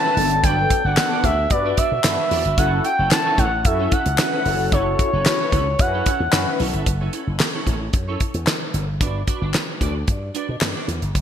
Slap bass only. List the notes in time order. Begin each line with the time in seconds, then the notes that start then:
0.17 G1
0.43 G1
0.85 G1
1.24 D2
1.51 G2
1.92 B2
2.04 G2
2.31 E2
2.45 G1
2.58 F#1
2.99 F#1
3.38 A1
3.65 F#2
4.06 C#2
4.45 F#1
4.72 F#1
5.13 F#1
5.52 C#2
5.79 F#2
6.20 E2
6.33 F#2
6.60 B1
6.74 G1
6.86 F#1
7.27 F#1
7.67 A1
7.93 F#2
8.34 E2
8.74 G1
9.01 G1
9.42 G1
9.81 D2
10.08 G2
10.49 B2
10.61 G2
10.88 E2
11.02 G1
11.15 F#1